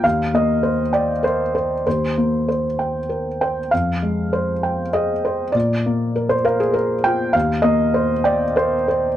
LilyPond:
\new Staff \with { instrumentName = "Felt piano" } { \time 3/4 \key ees \major \tempo 4 = 99 << { f''8 ees''4 d''8 c''4 | c''2 r8 g''8 | f''2 ees''4 | d''4~ d''16 c''16 bes'16 aes'16 bes'8 g''8 |
f''8 ees''4 d''8 c''4 | } \\ { ees,8 bes8 c''8 g''8 bes'8 c''8 | ees,8 bes8 c''8 g''8 bes'8 c''8 | f,8 aes8 c''8 g''8 aes'8 c''8 | bes,8 bes8 bes'8 f''4 f'8 |
ees,8 bes8 c''8 g''8 bes'8 c''8 | } >> }